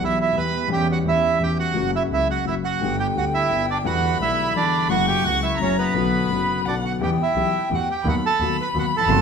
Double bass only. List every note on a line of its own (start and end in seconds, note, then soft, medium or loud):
0.00 0.33 B1 soft
0.35 0.68 E2 soft
0.69 1.03 E2 medium
1.04 1.37 E2 soft
1.39 1.72 E2 soft
1.74 2.08 F#1 medium
2.09 2.43 C#2 soft
2.45 2.78 F#1 soft
2.80 3.14 G1 medium
3.16 3.49 D2 soft
3.51 3.84 G1 soft
3.86 4.19 E2 medium
4.20 4.53 B1 soft
4.55 4.87 E2 soft
4.89 5.22 F#1 medium
5.24 5.57 C#2 soft
5.59 5.92 F#1 soft
5.93 6.27 B1 medium
6.29 6.63 F#1 soft
6.65 6.98 B1 soft
6.99 7.15 E2 medium
7.36 7.50 B1 soft
7.70 7.85 E2 soft
8.05 8.20 D#2 medium
8.40 8.55 D#2 medium
8.74 8.89 D#2 medium
9.08 9.22 F#1 medium